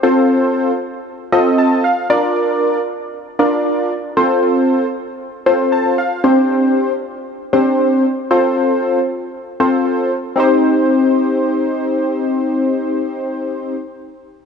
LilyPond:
\new Staff \with { instrumentName = "Synth keys" } { \time 4/4 \key c \dorian \tempo 4 = 116 << { r2. a''8 f''8 | r1 | r2. a''8 f''8 | r1 |
r1 | r1 | r1 | } \\ { <c' f' a' c''>4. r4 <c' f' a' ees''>4 r8 | <d' f' bes' d''>4. r4 <d' f' bes' d''>4 r8 | <c' f' a' c''>4. r4 <c' f' a' c''>4 r8 | <c' d' g' c''>4. r4 <c' d' g' c''>4 r8 |
<c' f' a' c''>4. r4 <c' f' a' c''>4 r8 | <c' ees' g' c''>1~ | <c' ees' g' c''>1 | } >> }